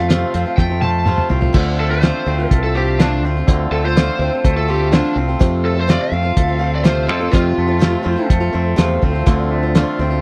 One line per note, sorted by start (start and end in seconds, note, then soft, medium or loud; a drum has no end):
0.00 0.23 F2 medium
0.00 0.82 F2 medium
0.00 0.58 A3 medium
0.00 0.33 C4 medium
0.00 0.61 F5 medium
0.09 0.34 F2 medium
0.09 0.34 C3 medium
0.09 0.33 F3 medium
0.09 0.33 A3 medium
0.09 0.34 C4 medium
0.09 0.34 F4 medium
0.09 snare loud
0.09 closed hi-hat medium
0.34 0.44 F2 medium
0.34 0.46 F3 medium
0.34 0.46 A3 medium
0.34 0.45 C4 medium
0.34 0.44 F4 medium
0.34 closed hi-hat medium
0.46 0.71 F3 soft
0.46 0.70 A3 soft
0.46 0.69 C4 soft
0.46 0.68 F4 soft
0.57 1.14 F2 medium
0.57 1.55 A3 medium
0.57 0.81 G5 medium
0.57 kick loud
0.57 snare medium
0.69 0.80 F3 soft
0.69 0.82 A3 soft
0.69 0.82 C4 soft
0.69 0.82 F4 soft
0.82 1.06 F3 soft
0.82 1.06 A3 medium
0.82 1.06 C4 medium
0.82 1.07 F4 medium
0.82 1.27 A5 medium
0.82 high tom medium
1.06 1.30 F2 medium
1.06 1.30 C3 medium
1.06 1.28 F3 medium
1.06 1.29 A3 medium
1.06 1.30 C4 medium
1.06 1.30 F4 medium
1.06 mid tom medium
1.18 mid tom medium
1.29 1.49 C2 medium
1.29 1.42 F3 medium
1.29 1.41 A3 medium
1.29 1.41 C4 medium
1.29 1.39 F4 medium
1.29 floor tom medium
1.41 1.53 F3 soft
1.41 1.53 A3 soft
1.41 1.53 C4 soft
1.41 1.54 F4 medium
1.41 floor tom medium
1.53 2.10 D2 loud
1.53 1.90 D3 medium
1.53 1.90 F3 medium
1.53 1.91 A3 medium
1.53 5.35 C4 medium
1.53 1.91 C4 medium
1.53 5.36 D4 medium
1.53 5.36 F4 medium
1.53 1.89 F4 medium
1.53 kick loud
1.53 crash loud
1.79 2.50 A3 medium
1.79 1.90 A4 medium
1.90 2.02 A3 soft
1.90 2.01 C4 soft
1.90 2.02 F4 medium
1.90 2.46 C5 medium
2.01 2.26 D3 medium
2.01 2.25 F3 medium
2.01 2.26 A3 medium
2.01 2.26 C4 medium
2.01 2.27 F4 medium
2.01 snare medium
2.01 closed hi-hat soft
2.26 2.45 D2 medium
2.26 2.39 F3 medium
2.26 2.39 A3 medium
2.26 2.38 C4 medium
2.26 2.37 F4 medium
2.38 2.64 A3 soft
2.38 2.63 C4 medium
2.38 2.63 F4 soft
2.46 2.61 A#4 medium
2.51 3.22 C2 medium
2.51 3.71 A3 medium
2.51 kick loud
2.51 closed hi-hat medium
2.63 2.75 A3 soft
2.63 2.76 C4 soft
2.63 2.76 F4 soft
2.63 2.75 A4 medium
2.75 2.99 F3 medium
2.75 3.00 A3 soft
2.75 3.00 C4 medium
2.75 3.01 F4 medium
2.75 2.99 G4 medium
3.00 3.24 D3 medium
3.00 3.23 F3 medium
3.00 3.24 A3 medium
3.00 3.24 C4 medium
3.00 3.23 D4 medium
3.00 3.25 F4 medium
3.00 snare loud
3.00 closed hi-hat medium
3.22 3.41 D2 loud
3.22 3.36 F3 medium
3.22 3.37 A3 medium
3.22 3.37 C4 medium
3.26 3.36 F4 medium
3.37 3.47 A3 soft
3.37 3.48 C4 soft
3.37 3.48 F4 medium
3.48 3.66 D2 loud
3.48 3.84 D3 medium
3.48 3.84 F3 medium
3.48 3.84 A3 medium
3.48 3.84 C4 medium
3.48 3.83 F4 medium
3.48 kick loud
3.48 closed hi-hat medium
3.71 4.09 D2 medium
3.71 4.44 A3 medium
3.71 3.84 A4 medium
3.84 3.96 A3 soft
3.84 3.96 C4 soft
3.84 3.96 F4 medium
3.84 4.55 C5 loud
3.96 4.20 D3 medium
3.96 4.18 F3 medium
3.96 4.19 A3 medium
3.96 4.20 C4 medium
3.96 4.20 F4 medium
3.96 snare loud
3.96 closed hi-hat medium
4.19 4.29 D2 medium
4.19 4.32 F3 medium
4.19 4.32 A3 medium
4.19 4.33 C4 medium
4.19 4.31 F4 medium
4.32 4.57 A3 soft
4.32 4.56 C4 soft
4.32 4.55 F4 soft
4.45 5.00 D2 medium
4.45 5.64 A3 medium
4.45 kick loud
4.45 closed hi-hat medium
4.56 4.67 A3 soft
4.56 4.68 C4 soft
4.56 4.68 F4 soft
4.56 4.70 A4 medium
4.68 4.91 F3 medium
4.68 4.91 A3 medium
4.68 4.91 C4 medium
4.68 4.92 F4 medium
4.68 4.92 G4 medium
4.92 5.16 D3 medium
4.92 5.14 F3 medium
4.92 5.15 A3 medium
4.92 5.16 C4 medium
4.92 5.16 D4 medium
4.92 5.16 F4 medium
4.92 snare loud
4.92 closed hi-hat medium
5.15 5.35 C2 medium
5.15 5.28 F3 medium
5.15 5.28 A3 medium
5.15 5.27 C4 medium
5.15 5.26 F4 medium
5.28 5.39 A3 soft
5.28 5.39 C4 medium
5.28 5.40 F4 soft
5.39 5.76 F2 medium
5.39 5.97 F2 loud
5.39 5.76 C3 medium
5.39 5.76 F3 medium
5.39 5.76 A3 medium
5.39 9.24 A3 medium
5.39 5.75 C4 medium
5.39 9.24 C4 medium
5.39 5.73 F4 medium
5.39 9.24 F4 medium
5.39 kick loud
5.39 closed hi-hat medium
5.64 6.37 A3 medium
5.64 5.80 A4 medium
5.75 5.87 F3 soft
5.75 5.87 A3 soft
5.75 5.87 C4 soft
5.75 5.88 F4 soft
5.80 5.90 C5 medium
5.87 6.12 F2 medium
5.87 6.12 C3 medium
5.87 6.10 F3 medium
5.87 6.11 A3 medium
5.87 6.12 C4 medium
5.87 6.12 F4 medium
5.87 6.01 D5 medium
5.87 snare loud
5.87 closed hi-hat medium
6.02 6.71 F5 loud
6.11 6.31 F2 medium
6.11 6.24 F3 medium
6.11 6.24 A3 medium
6.11 6.23 C4 medium
6.11 6.22 F4 medium
6.23 6.49 F3 soft
6.23 6.48 A3 soft
6.23 6.47 C4 soft
6.23 6.46 F4 medium
6.37 7.09 D2 medium
6.37 7.58 A3 medium
6.37 kick loud
6.37 closed hi-hat medium
6.47 6.57 F3 soft
6.47 6.58 A3 soft
6.47 6.59 C4 soft
6.47 6.60 F4 medium
6.59 6.83 F3 medium
6.59 6.83 A3 medium
6.59 6.84 C4 medium
6.59 6.83 F4 medium
6.75 6.83 D5 medium
6.84 7.09 F2 medium
6.84 7.09 C3 medium
6.84 7.05 F3 medium
6.84 7.07 A3 medium
6.84 7.07 C4 medium
6.84 7.07 F4 medium
6.84 7.08 C5 medium
6.84 snare loud
6.84 closed hi-hat medium
7.06 7.28 F2 medium
7.06 7.20 F3 medium
7.06 7.20 A3 medium
7.06 7.20 C4 medium
7.06 7.18 F4 medium
7.06 7.32 A4 medium
7.19 7.32 F3 soft
7.19 7.31 A3 soft
7.19 7.32 C4 soft
7.19 7.32 F4 soft
7.31 7.69 F2 medium
7.31 7.52 F2 loud
7.31 7.69 C3 medium
7.31 7.68 F3 medium
7.31 7.67 A3 medium
7.31 7.67 C4 medium
7.31 8.26 F4 loud
7.31 7.66 F4 medium
7.31 kick loud
7.31 closed hi-hat medium
7.58 7.95 F2 medium
7.58 8.29 A3 medium
7.67 7.79 F3 soft
7.67 7.80 A3 soft
7.67 7.80 C4 soft
7.67 7.80 F4 medium
7.79 8.05 F2 medium
7.79 8.05 C3 medium
7.79 8.01 F3 medium
7.79 8.02 A3 medium
7.79 8.03 C4 medium
7.79 8.04 F4 medium
7.79 snare loud
7.79 closed hi-hat medium
8.03 8.15 F2 loud
8.03 8.16 F3 medium
8.03 8.17 A3 medium
8.03 8.17 C4 medium
8.03 8.15 F4 medium
8.16 8.41 F3 soft
8.16 8.41 A3 soft
8.16 8.40 C4 soft
8.16 8.39 F4 medium
8.30 8.49 F2 medium
8.30 9.51 A3 medium
8.30 kick loud
8.30 closed hi-hat medium
8.40 8.51 F3 soft
8.40 8.52 A3 soft
8.40 8.53 C4 medium
8.40 8.53 F4 medium
8.53 8.76 F2 medium
8.53 8.76 F3 medium
8.53 8.76 A3 medium
8.53 8.76 C4 medium
8.53 8.76 F4 medium
8.76 9.00 E2 medium
8.76 9.02 F2 medium
8.76 9.02 C3 medium
8.76 9.00 F3 medium
8.76 9.01 A3 medium
8.76 9.02 C4 medium
8.76 9.02 F4 medium
8.76 snare medium
8.76 closed hi-hat medium
9.01 9.24 D2 medium
9.01 9.14 F3 medium
9.01 9.14 A3 medium
9.01 9.13 C4 medium
9.01 9.12 F4 medium
9.01 kick medium
9.13 9.25 F3 soft
9.13 9.25 A3 soft
9.13 9.26 C4 soft
9.13 9.26 F4 medium
9.26 9.83 D2 loud
9.26 9.63 D3 medium
9.26 9.63 F3 medium
9.26 9.63 A3 medium
9.26 9.62 C4 medium
9.26 10.21 C4 medium
9.26 10.21 D4 medium
9.26 9.61 F4 medium
9.26 10.21 F4 medium
9.26 kick loud
9.26 closed hi-hat medium
9.51 10.21 A3 medium
9.63 9.75 A3 soft
9.63 9.75 C4 soft
9.63 9.75 F4 medium
9.75 10.00 D3 medium
9.75 9.98 F3 medium
9.75 9.98 A3 loud
9.75 9.99 C4 medium
9.75 10.00 F4 loud
9.75 snare medium
9.75 closed hi-hat medium
9.99 10.18 D2 medium
9.99 10.11 F3 medium
9.99 10.11 A3 medium
9.99 10.10 C4 medium
9.99 10.09 F4 medium
10.10 10.21 A3 soft
10.10 10.21 C4 medium
10.10 10.21 F4 medium